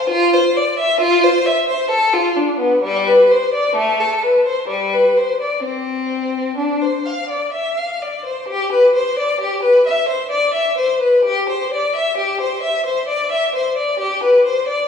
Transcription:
violin
0.09 F4
0.34 C5
0.56 D5
0.79 E5
1.00 F4
1.23 C5
1.46 E5
1.68 C5
1.90 A4
2.13 F4
2.36 D4
2.59 B3
2.82 G3
3.07 B4
3.31 C5
3.54 D5
3.75 A3
4.00 A4
4.23 B4
4.46 C5
4.68 G3
4.93 B4
5.17 C5
5.41 D5
5.63 C4
6.57 D4
6.81 C5
7.06 F5
7.29 D5
7.52 E5
7.77 F5
8.02 D5
8.25 C5
8.48 G4
8.72 B4
8.95 C5
9.18 D5
9.41 G4
9.63 B4
9.86 E5
10.08 C5
10.31 D5
10.54 E5
10.77 C5
11.01 B4
11.24 G4
11.49 C5
11.73 D5
11.96 E5
12.17 G4
12.41 C5
12.63 E5
12.86 C5
13.08 D5
13.31 E5
13.55 C5
13.77 D5
13.99 G4
14.23 B4
14.46 C5
14.68 D5

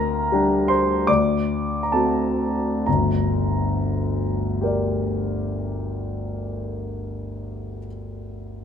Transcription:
grand piano
Already playing: D2 A#4 A#5
0.32 G3 D4 G4
0.68 C5 C6
1.07 D2 D5 D6
1.83 A#5
1.92 A3 C4 F#4 A4 A5
2.86 G1 D2 A#5
4.61 G4 A#4
4.65 D5

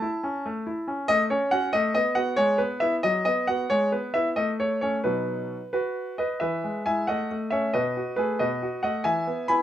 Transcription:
grand piano
Already playing: A5
0.02 E4
0.23 C#4
0.46 A3
0.67 E4
0.88 C#4
1.08 A3 D#5
1.30 C#4 C#5
1.51 C#4 F#4 F#5
1.73 A3 D#5
1.95 B3 D#5
2.15 B3 F#4 F#5
2.36 G#3 C#5
2.58 B3 B4
2.80 B3 E4 E5
3.03 F#3 D#5
3.25 B3 D#5
3.47 B3 F#4 F#5
3.70 G#3 C#5
3.92 B3 B4
4.14 B3 E4 E5
4.36 A3 D#5
4.60 A3 C#5
4.81 A3 C#4 C#5
5.04 B2 F#3 D#4 B4
5.73 F#4 B4
6.18 B4 D#5
6.40 E3 B4 E5
6.64 G#3
6.86 G#3 E4 E5 G#5
7.07 A3 D#5 F#5
7.31 A3
7.51 A3 C#4 C#5 E5
7.73 B2 B4 D#5
7.97 F#4
8.16 A3 G#4 B4
8.39 B2 B4 D#5
8.63 F#4
8.83 A3 D#5 F#5
9.04 E3 E5 G#5
9.27 B3
9.48 B3 E4 G#5 B5

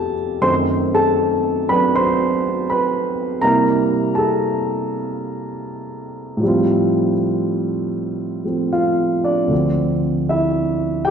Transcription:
grand piano
Already playing: F2 C3 A3 D#4 F4 G4 A4 F5 G5 A5
0.41 F#2 D#3 A3 C4 C5 C6
0.94 A4 A5
1.68 F#3 C4 D4 B4 B5
1.95 C5 C6
2.70 B4 B5
3.41 C3 G3 A#3 E4 A#4 A#5
4.15 A4 A5
6.37 A2 F3
6.43 G3 C4
6.48 F4
8.44 F3 A3 C4
8.73 F4 F5
9.24 D4 D5
9.47 D2 D3 F3
9.52 C4
10.29 E4 E5
11.05 G4 G5

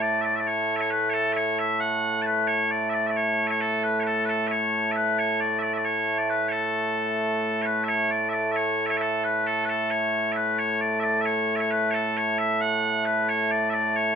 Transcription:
bagpipes
Already playing: A2 A3
0.02 D5
0.21 D5 E5
0.36 E5
0.40 D5
0.47 C#5
0.76 E5
0.81 C#5
0.91 B4
1.10 A4 C#5
1.33 C#5 E5
1.59 E5
1.80 F#5
2.22 A5
2.26 B4
2.47 C#5
2.71 D5
2.90 D5 E5
3.07 D5 E5
3.16 C#5
3.47 C#5 E5
3.61 A4
3.83 B4
4.00 B4 C#5
4.07 A4
4.25 B4
4.29 A4
4.47 C#5 E5
4.92 E5
4.96 B4
5.19 C#5
5.40 D5
5.59 D5 E5
5.73 E5
5.77 D5
5.85 C#5
6.18 D5
6.30 B4
6.49 A4 C#5
7.62 B4 C#5
7.84 E5
7.88 C#5
8.10 D5
8.29 D5 E5
8.52 E5
8.56 C#5
8.86 E5
8.90 C#5
8.97 E5
9.01 A4
9.24 B4
9.46 A4
9.65 B4
9.69 A4
9.91 C#5
10.32 E5
10.36 B4
10.59 C#5
10.81 D5
11.00 D5 E5
11.21 E5
11.25 C#5
11.56 E5
11.60 C#5
11.71 B4
11.91 A4 C#5
12.17 C#5
12.38 E5
12.61 F#5
13.05 B4
13.29 C#5
13.51 D5
13.70 D5 E5
13.96 C#5

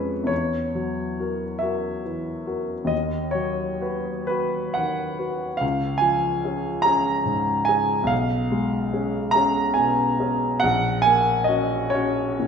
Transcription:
grand piano
Already playing: F2 G#3 C#4 G#4 B4 C#5
0.24 E2 C#5
0.75 F#3
1.20 F#4 A#4
1.59 F#4 A#4 E5
2.05 E3
2.47 F#4 A#4
2.85 D#2 D#5
3.31 F#3 C#5
3.81 F#4 B4
4.27 F#4 B4
4.74 D#3 F#5
5.19 F#4 B4
5.57 C#2 F5
5.98 F3 G#5
6.44 C#4 G#4
6.82 C#4 G#4 A#5
7.26 G#2
7.65 C#4 G#4 G#5
8.03 B1 F5
8.52 G#3
8.93 C#4 G#4
9.31 C#4 A#5
9.36 G#4
9.74 B2 G#5
10.20 C#4 G#4
10.60 A#1 F#5
11.02 A#3 G#5
11.44 C#4 D#5
11.48 F#4
11.90 C#4 C#5
11.94 F#4
12.40 A#2

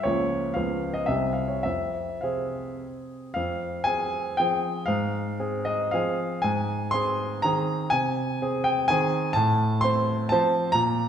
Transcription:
grand piano
0.03 C#2 F3 A#3 F4 C#5
0.54 C#2 F3 B3 F4 F5
0.94 D#5
1.06 C2 C3 C4 G4 E5
1.33 F5
1.48 C#5
1.63 F2 E5
2.21 C3 C4 G#4 F5
3.34 F2 F5
3.84 C4 G#4 G#5
4.37 F3 C4 G#4 G5
4.86 G#2 F5
5.40 C4 G#4
5.65 D#5
5.91 F3 C4 G#4 F5
6.42 G#2 G#5
6.91 C4 G#4 C6
7.42 D#3 C4 G#4 A#5
7.90 C3 G#5
8.42 C4 G#4
8.64 G5
8.88 D#3 C4 G#4 G#5
9.33 A2 A5
9.81 C4 C5 C6
10.29 F3 C4 C5 A5
10.72 A#2 A#5

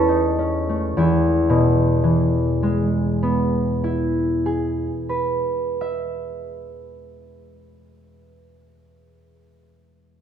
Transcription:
harp
Already playing: E2 A3 C#4 E4 A4 B4 C#5 E5
0.08 D#4
0.39 C#4
0.69 A3
0.97 E2 E4
1.49 B2
2.03 E3
2.63 G#3
3.23 B3
3.84 E4
4.46 G#4
5.09 B4
5.81 E5

